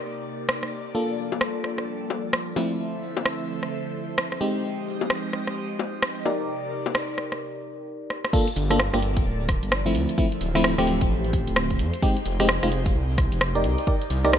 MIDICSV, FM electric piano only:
0, 0, Header, 1, 2, 480
1, 0, Start_track
1, 0, Key_signature, -2, "minor"
1, 0, Tempo, 461538
1, 986, Time_signature, 4, 2, 24, 8
1, 14964, End_track
2, 0, Start_track
2, 0, Title_t, "FM electric piano"
2, 0, Program_c, 0, 5
2, 0, Note_on_c, 0, 63, 68
2, 0, Note_on_c, 0, 67, 65
2, 0, Note_on_c, 0, 70, 64
2, 0, Note_on_c, 0, 74, 79
2, 964, Note_off_c, 0, 63, 0
2, 964, Note_off_c, 0, 67, 0
2, 964, Note_off_c, 0, 70, 0
2, 964, Note_off_c, 0, 74, 0
2, 986, Note_on_c, 0, 58, 70
2, 986, Note_on_c, 0, 62, 63
2, 986, Note_on_c, 0, 65, 66
2, 986, Note_on_c, 0, 69, 77
2, 2644, Note_off_c, 0, 58, 0
2, 2644, Note_off_c, 0, 62, 0
2, 2644, Note_off_c, 0, 65, 0
2, 2644, Note_off_c, 0, 69, 0
2, 2666, Note_on_c, 0, 53, 67
2, 2666, Note_on_c, 0, 57, 64
2, 2666, Note_on_c, 0, 60, 67
2, 2666, Note_on_c, 0, 64, 82
2, 4564, Note_off_c, 0, 53, 0
2, 4564, Note_off_c, 0, 57, 0
2, 4564, Note_off_c, 0, 60, 0
2, 4564, Note_off_c, 0, 64, 0
2, 4584, Note_on_c, 0, 56, 71
2, 4584, Note_on_c, 0, 60, 69
2, 4584, Note_on_c, 0, 63, 65
2, 4584, Note_on_c, 0, 67, 80
2, 6483, Note_off_c, 0, 56, 0
2, 6483, Note_off_c, 0, 60, 0
2, 6483, Note_off_c, 0, 63, 0
2, 6483, Note_off_c, 0, 67, 0
2, 6505, Note_on_c, 0, 63, 76
2, 6505, Note_on_c, 0, 67, 66
2, 6505, Note_on_c, 0, 70, 64
2, 6505, Note_on_c, 0, 74, 81
2, 8644, Note_off_c, 0, 63, 0
2, 8644, Note_off_c, 0, 67, 0
2, 8644, Note_off_c, 0, 70, 0
2, 8644, Note_off_c, 0, 74, 0
2, 8665, Note_on_c, 0, 58, 82
2, 8665, Note_on_c, 0, 65, 77
2, 8665, Note_on_c, 0, 69, 92
2, 8666, Note_on_c, 0, 62, 79
2, 8804, Note_off_c, 0, 58, 0
2, 8804, Note_off_c, 0, 62, 0
2, 8804, Note_off_c, 0, 65, 0
2, 8804, Note_off_c, 0, 69, 0
2, 9052, Note_on_c, 0, 62, 80
2, 9052, Note_on_c, 0, 65, 79
2, 9052, Note_on_c, 0, 69, 96
2, 9053, Note_on_c, 0, 58, 89
2, 9140, Note_off_c, 0, 58, 0
2, 9140, Note_off_c, 0, 62, 0
2, 9140, Note_off_c, 0, 65, 0
2, 9140, Note_off_c, 0, 69, 0
2, 9293, Note_on_c, 0, 58, 83
2, 9293, Note_on_c, 0, 62, 77
2, 9293, Note_on_c, 0, 65, 73
2, 9293, Note_on_c, 0, 67, 87
2, 9348, Note_off_c, 0, 58, 0
2, 9348, Note_off_c, 0, 62, 0
2, 9348, Note_off_c, 0, 65, 0
2, 9348, Note_off_c, 0, 67, 0
2, 10253, Note_on_c, 0, 53, 74
2, 10253, Note_on_c, 0, 57, 68
2, 10253, Note_on_c, 0, 60, 72
2, 10253, Note_on_c, 0, 64, 84
2, 10564, Note_off_c, 0, 53, 0
2, 10564, Note_off_c, 0, 57, 0
2, 10564, Note_off_c, 0, 60, 0
2, 10564, Note_off_c, 0, 64, 0
2, 10587, Note_on_c, 0, 53, 73
2, 10587, Note_on_c, 0, 57, 73
2, 10587, Note_on_c, 0, 60, 72
2, 10587, Note_on_c, 0, 64, 84
2, 10673, Note_off_c, 0, 53, 0
2, 10673, Note_off_c, 0, 57, 0
2, 10673, Note_off_c, 0, 60, 0
2, 10673, Note_off_c, 0, 64, 0
2, 10974, Note_on_c, 0, 53, 95
2, 10974, Note_on_c, 0, 57, 86
2, 10974, Note_on_c, 0, 60, 83
2, 10974, Note_on_c, 0, 64, 105
2, 11179, Note_off_c, 0, 53, 0
2, 11179, Note_off_c, 0, 57, 0
2, 11179, Note_off_c, 0, 60, 0
2, 11179, Note_off_c, 0, 64, 0
2, 11215, Note_on_c, 0, 53, 86
2, 11215, Note_on_c, 0, 57, 85
2, 11215, Note_on_c, 0, 60, 79
2, 11215, Note_on_c, 0, 67, 101
2, 12256, Note_off_c, 0, 53, 0
2, 12256, Note_off_c, 0, 57, 0
2, 12256, Note_off_c, 0, 60, 0
2, 12256, Note_off_c, 0, 67, 0
2, 12507, Note_on_c, 0, 56, 84
2, 12507, Note_on_c, 0, 60, 76
2, 12507, Note_on_c, 0, 63, 79
2, 12507, Note_on_c, 0, 67, 95
2, 12645, Note_off_c, 0, 56, 0
2, 12645, Note_off_c, 0, 60, 0
2, 12645, Note_off_c, 0, 63, 0
2, 12645, Note_off_c, 0, 67, 0
2, 12895, Note_on_c, 0, 56, 90
2, 12895, Note_on_c, 0, 60, 81
2, 12895, Note_on_c, 0, 63, 79
2, 12895, Note_on_c, 0, 67, 99
2, 12981, Note_off_c, 0, 56, 0
2, 12981, Note_off_c, 0, 60, 0
2, 12981, Note_off_c, 0, 63, 0
2, 12981, Note_off_c, 0, 67, 0
2, 13135, Note_on_c, 0, 56, 79
2, 13135, Note_on_c, 0, 60, 76
2, 13135, Note_on_c, 0, 63, 75
2, 13135, Note_on_c, 0, 65, 90
2, 13189, Note_off_c, 0, 56, 0
2, 13189, Note_off_c, 0, 60, 0
2, 13189, Note_off_c, 0, 63, 0
2, 13189, Note_off_c, 0, 65, 0
2, 14094, Note_on_c, 0, 63, 78
2, 14095, Note_on_c, 0, 67, 69
2, 14095, Note_on_c, 0, 70, 68
2, 14095, Note_on_c, 0, 74, 81
2, 14404, Note_off_c, 0, 63, 0
2, 14405, Note_off_c, 0, 67, 0
2, 14405, Note_off_c, 0, 70, 0
2, 14405, Note_off_c, 0, 74, 0
2, 14427, Note_on_c, 0, 63, 76
2, 14427, Note_on_c, 0, 67, 68
2, 14427, Note_on_c, 0, 70, 67
2, 14427, Note_on_c, 0, 74, 81
2, 14513, Note_off_c, 0, 63, 0
2, 14513, Note_off_c, 0, 67, 0
2, 14513, Note_off_c, 0, 70, 0
2, 14513, Note_off_c, 0, 74, 0
2, 14815, Note_on_c, 0, 67, 80
2, 14816, Note_on_c, 0, 63, 92
2, 14816, Note_on_c, 0, 70, 84
2, 14816, Note_on_c, 0, 74, 101
2, 14964, Note_off_c, 0, 63, 0
2, 14964, Note_off_c, 0, 67, 0
2, 14964, Note_off_c, 0, 70, 0
2, 14964, Note_off_c, 0, 74, 0
2, 14964, End_track
0, 0, End_of_file